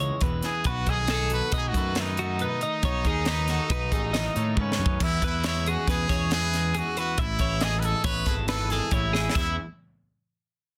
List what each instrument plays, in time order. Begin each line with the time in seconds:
Already playing: clean electric guitar E2 E3 C#4 F#4
0.00 clean electric guitar G#3 C#5
0.21 picked electric bass E1, clean electric guitar E2 B4, kick, closed hi-hat
0.42 clean electric guitar E3, trumpet G#4, snare, closed hi-hat
0.64 picked electric bass B1, clean electric guitar B2 B4, trumpet F#4, kick, closed hi-hat
0.86 picked electric bass B1, clean electric guitar D#3 D#5, trumpet G#4, kick, closed hi-hat
1.08 clean electric guitar D#4 A4, snare, closed hi-hat
1.30 clean electric guitar F#4, trumpet B4, closed hi-hat
1.52 picked electric bass B2, clean electric guitar D#4 D#5, kick, closed hi-hat
1.57 trumpet G#4
1.68 trumpet F#4
1.74 picked electric bass F#2, clean electric guitar A3 B4, kick, closed hi-hat
1.95 clean electric guitar D#3, snare, closed hi-hat
2.01 trumpet D#4
2.17 clean electric guitar A3 F#4, closed hi-hat
2.39 clean electric guitar B2 B4, closed hi-hat
2.61 clean electric guitar D#3 D#5, closed hi-hat
2.83 picked electric bass B1, clean electric guitar B2 C#5, kick, closed hi-hat
3.05 picked electric bass D#2, clean electric guitar D#3 G#4, kick, closed hi-hat
3.25 clean electric guitar D#4 B4, snare, closed hi-hat
3.48 clean electric guitar F#4 A4, snare, closed hi-hat
3.70 picked electric bass B1, clean electric guitar D#4 B4, kick, closed hi-hat
3.92 picked electric bass A1, clean electric guitar A3 G#4, kick, closed hi-hat
4.13 clean electric guitar D#3 D#5, snare, closed hi-hat
4.36 picked electric bass A2, clean electric guitar A3 C#5, closed hi-hat
4.57 picked electric bass G#2, clean electric guitar C#3 B4, trumpet C#4, kick
4.72 snare
4.79 picked electric bass F#2, clean electric guitar D#3
4.86 kick
5.00 picked electric bass E2, clean electric guitar E2, trumpet E4, kick, crash
5.22 picked electric bass E2, clean electric guitar E3 B4, trumpet E4, kick, closed hi-hat
5.44 clean electric guitar G#3 C#5, trumpet E4, snare, closed hi-hat
5.66 clean electric guitar C#4 G#4, trumpet F#4, closed hi-hat
5.87 picked electric bass E2, clean electric guitar B2 B4, trumpet G#4, kick, snare, closed hi-hat
6.09 picked electric bass E2, clean electric guitar G#3 C#5, kick, snare, closed hi-hat
6.31 clean electric guitar E3 B4, trumpet G#4, snare, closed hi-hat
6.53 clean electric guitar G#3, snare, closed hi-hat
6.75 clean electric guitar E2 G#4, trumpet F#4, closed hi-hat
6.97 clean electric guitar E3 B4, trumpet F#4, closed hi-hat
7.18 picked electric bass A1, clean electric guitar A2 E5, trumpet E4, kick, closed hi-hat
7.39 picked electric bass A1, clean electric guitar E3 C#5, kick, closed hi-hat
7.61 clean electric guitar G#3 D#5, trumpet G#4, snare, closed hi-hat
7.79 trumpet B4, closed hi-hat
7.85 clean electric guitar G#4, trumpet A4
8.04 picked electric bass A1, trumpet B4, clean electric guitar C#5, kick, snare, closed hi-hat
8.26 picked electric bass G#1, clean electric guitar G#3 A4, kick, snare, closed hi-hat
8.48 clean electric guitar E3 B4, trumpet A4, snare, closed hi-hat
8.70 clean electric guitar G#3 A4, trumpet G#4, snare, closed hi-hat
8.91 picked electric bass A1, clean electric guitar A2 C#5, trumpet E4, kick, closed hi-hat
9.13 clean electric guitar E3 G#4, snare
9.29 snare
9.35 clean electric guitar E2 E3 G#3 C#4 E4 G#4, picked electric bass E2, trumpet E4, kick, crash